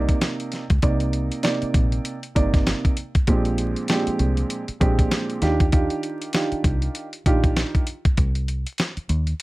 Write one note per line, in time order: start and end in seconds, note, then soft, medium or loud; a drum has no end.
0.00 0.14 C2 medium
0.00 0.63 C3 loud
0.00 0.63 A#3 medium
0.00 0.63 D#4 medium
0.00 0.63 D5 loud
0.09 kick loud
0.09 closed hi-hat medium
0.21 snare loud
0.21 closed hi-hat medium
0.40 closed hi-hat soft
0.52 snare soft
0.52 closed hi-hat medium
0.70 0.80 C#2 medium
0.70 kick medium
0.70 closed hi-hat medium
0.82 1.29 C2 loud
0.82 1.40 C3 medium
0.82 1.40 A#3 medium
0.82 1.40 D#4 medium
0.82 1.40 D5 loud
0.82 kick loud
0.82 closed hi-hat loud
1.00 closed hi-hat medium
1.13 closed hi-hat medium
1.32 closed hi-hat medium
1.43 2.16 C3 medium
1.43 2.16 A#3 medium
1.43 2.16 D#4 medium
1.43 2.16 D5 loud
1.43 snare loud
1.43 closed hi-hat loud
1.62 muted fingered electric bass stroke soft
1.62 closed hi-hat medium
1.74 1.98 A#1 medium
1.74 kick medium
1.74 closed hi-hat medium
1.92 closed hi-hat medium
2.05 closed hi-hat loud
2.23 closed hi-hat medium
2.35 2.73 G1 loud
2.35 2.93 C3 medium
2.35 2.93 A#3 medium
2.35 2.93 D#4 medium
2.35 2.93 D5 loud
2.35 kick loud
2.35 closed hi-hat medium
2.54 kick loud
2.54 snare soft
2.54 closed hi-hat medium
2.67 snare loud
2.67 closed hi-hat medium
2.85 kick medium
2.85 closed hi-hat soft
2.97 closed hi-hat medium
3.15 kick medium
3.15 closed hi-hat medium
3.27 3.74 A#1 loud
3.27 3.85 A#2 loud
3.27 3.85 F3 medium
3.27 3.85 G#3 medium
3.27 3.85 C4 medium
3.27 3.85 D4 medium
3.27 3.85 G4 loud
3.27 kick loud
3.27 closed hi-hat loud
3.45 closed hi-hat medium
3.58 closed hi-hat medium
3.76 closed hi-hat medium
3.88 4.61 A#2 medium
3.88 4.61 F3 medium
3.88 4.61 G#3 medium
3.88 4.61 C4 medium
3.88 4.61 D4 medium
3.88 4.61 G4 loud
3.88 snare loud
3.88 closed hi-hat loud
4.07 muted fingered electric bass stroke medium
4.07 closed hi-hat medium
4.19 4.43 C2 medium
4.19 closed hi-hat medium
4.37 closed hi-hat medium
4.50 closed hi-hat loud
4.68 muted fingered electric bass stroke medium
4.68 closed hi-hat medium
4.80 5.04 A#1 loud
4.80 5.42 A#2 medium
4.80 5.42 F3 medium
4.80 5.42 G#3 medium
4.80 5.42 C4 medium
4.80 5.40 D4 medium
4.80 5.41 G4 loud
4.80 kick loud
4.80 closed hi-hat medium
4.99 kick loud
4.99 closed hi-hat medium
5.11 snare loud
5.11 closed hi-hat medium
5.30 closed hi-hat soft
5.42 5.88 D#2 loud
5.42 5.64 D#3 loud
5.42 5.64 D4 medium
5.42 5.64 F4 medium
5.42 5.64 G4 loud
5.42 snare soft
5.42 closed hi-hat medium
5.60 kick medium
5.60 closed hi-hat medium
5.72 6.30 D#3 loud
5.72 6.30 D4 medium
5.72 6.30 F4 medium
5.72 6.30 G4 loud
5.72 kick loud
5.72 closed hi-hat loud
5.90 closed hi-hat medium
6.03 closed hi-hat medium
6.22 closed hi-hat medium
6.33 7.06 D#3 medium
6.33 7.06 D4 medium
6.33 7.06 F4 medium
6.33 7.06 G4 medium
6.33 snare loud
6.33 closed hi-hat loud
6.52 muted fingered electric bass stroke soft
6.52 closed hi-hat soft
6.64 6.87 C2 loud
6.64 kick medium
6.64 closed hi-hat medium
6.82 closed hi-hat medium
6.95 closed hi-hat loud
7.13 closed hi-hat medium
7.26 7.63 A#1 loud
7.26 7.83 D#3 loud
7.26 7.83 D4 medium
7.26 7.83 F4 medium
7.26 7.83 G4 loud
7.26 kick loud
7.26 closed hi-hat medium
7.44 kick loud
7.44 closed hi-hat medium
7.56 snare loud
7.56 closed hi-hat medium
7.75 kick medium
7.75 closed hi-hat soft
7.87 closed hi-hat medium
8.05 kick medium
8.05 closed hi-hat medium
8.17 8.64 C2 loud
8.17 kick loud
8.17 closed hi-hat loud
8.35 closed hi-hat medium
8.48 closed hi-hat medium
8.67 closed hi-hat medium
8.78 snare loud
8.78 closed hi-hat loud
8.97 muted fingered electric bass stroke soft
8.97 closed hi-hat soft
9.09 9.33 D#2 loud
9.09 closed hi-hat medium
9.27 closed hi-hat medium